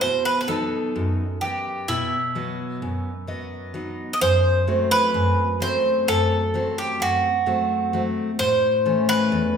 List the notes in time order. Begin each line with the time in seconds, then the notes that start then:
0.01 B2 C5
0.25 B4
0.41 B4
0.48 F#3 B3 D#4 A4
0.96 F#2
1.41 B3 G4 D#5
1.88 B2 E4
2.35 F#3 B3 D#5
2.82 F#2
3.27 F#3 B3 D#5
3.74 F#3 B3 D#4
4.13 D#5
4.21 F#2 C5
4.67 F#3 A3 C4
4.91 B4
5.14 F#2
5.60 F#3 A3 C4 C5
6.08 F#2 A4
6.54 F#3 A3 C4
6.78 G4
7.00 F#2 F#4
7.46 F#3 A3 C4
7.93 F#3 A3 C4
8.39 A2 C5
8.86 E3 A3 C#4
9.09 B4
9.32 E2